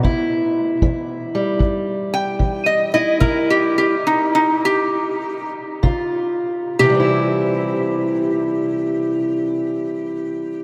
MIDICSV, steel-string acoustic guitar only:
0, 0, Header, 1, 2, 480
1, 0, Start_track
1, 0, Key_signature, 0, "major"
1, 0, Tempo, 783290
1, 32, Time_signature, 4, 2, 24, 8
1, 1472, Tempo, 828729
1, 2432, Tempo, 872093
1, 2912, Tempo, 931677
1, 3872, Tempo, 977199
1, 5760, End_track
2, 0, Start_track
2, 0, Title_t, "Steel-string acoustic guitar"
2, 0, Program_c, 0, 25
2, 20, Note_on_c, 0, 48, 70
2, 27, Note_on_c, 0, 64, 72
2, 468, Note_off_c, 0, 48, 0
2, 506, Note_on_c, 0, 52, 69
2, 826, Note_on_c, 0, 55, 57
2, 953, Note_off_c, 0, 52, 0
2, 976, Note_on_c, 0, 43, 68
2, 1436, Note_off_c, 0, 43, 0
2, 1466, Note_on_c, 0, 52, 64
2, 1778, Note_off_c, 0, 64, 0
2, 1785, Note_on_c, 0, 64, 70
2, 1911, Note_off_c, 0, 52, 0
2, 1933, Note_off_c, 0, 64, 0
2, 1934, Note_on_c, 0, 48, 66
2, 1939, Note_on_c, 0, 64, 71
2, 2362, Note_off_c, 0, 48, 0
2, 2365, Note_off_c, 0, 64, 0
2, 2368, Note_off_c, 0, 55, 0
2, 3374, Note_on_c, 0, 65, 68
2, 3375, Note_on_c, 0, 49, 80
2, 3836, Note_off_c, 0, 49, 0
2, 3848, Note_off_c, 0, 65, 0
2, 3872, Note_on_c, 0, 48, 60
2, 3892, Note_on_c, 0, 52, 60
2, 3921, Note_on_c, 0, 55, 60
2, 3946, Note_on_c, 0, 60, 57
2, 3971, Note_on_c, 0, 64, 54
2, 5760, Note_off_c, 0, 48, 0
2, 5760, Note_off_c, 0, 52, 0
2, 5760, Note_off_c, 0, 55, 0
2, 5760, Note_off_c, 0, 60, 0
2, 5760, Note_off_c, 0, 64, 0
2, 5760, End_track
0, 0, End_of_file